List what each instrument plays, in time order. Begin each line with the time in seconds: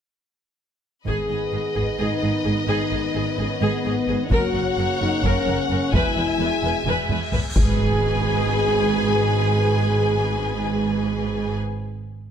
1.06 double bass section G#1, cello section G#2, trombone section D#3 B3, french horn section G#4, viola section G#4, violin section B4 D#5, taiko
1.30 double bass section G#1, cello section G#2, viola section G#4
1.53 double bass section G#1, cello section G#2, viola section G#4
1.75 double bass section G#1, cello section G#2, viola section G#4, taiko
1.99 double bass section G#1, cello section G#2, french horn section D#4, viola section G#4
2.22 double bass section G#1, cello section G#2, viola section G#4
2.44 double bass section G#1, cello section G#2, viola section G#4
2.67 double bass section G#1, cello section G#2, french horn section D#4, viola section G#4
2.90 double bass section G#1, cello section G#2, viola section G#4
3.14 double bass section G#1, cello section G#2, viola section G#4
3.37 double bass section G#1, cello section G#2, french horn section C#4, viola section G#4
3.60 double bass section G#1, cello section G#2, french horn section B3, viola section G#4
3.85 double bass section G#1, cello section G#2, viola section G#4
4.08 double bass section G#1, cello section G#2, viola section G#4
4.29 double bass section F#1, cello section F#2, trombone section C#3 A#3, french horn section F#4, viola section A#4, violin section C#5 F#5, taiko
4.54 double bass section F#1, cello section F#2, viola section A#4
4.77 double bass section F#1, cello section F#2, viola section A#4
5.01 double bass section F#1, cello section F#2, french horn section D#4, viola section A#4
5.23 double bass section F#1, cello section F#2, french horn section C#4, viola section A#4, taiko
5.47 double bass section F#1, cello section F#2, viola section A#4
5.70 double bass section F#1, cello section F#2, viola section A#4
5.92 double bass section E1, cello section E2, trombone section B2 G#3, french horn section E4, viola section B4, violin section E5 G#5, taiko, cymbal swell
6.17 double bass section E1, cello section E2, viola section B4
6.40 double bass section E1, cello section E2, viola section B4
6.63 double bass section E1, cello section E2, viola section B4
6.86 double bass section E1, cello section E2, viola section B4, taiko low-mid
7.09 double bass section E1, cello section E2, viola section B4, taiko low-mid
7.33 double bass section E1, cello section E2, viola section B4, taiko low
7.56 double bass section G#1, cello section G#2, trombone section B2 G#3, viola section G#4, french horn section G#4, violin section B4 G#5, taiko, impact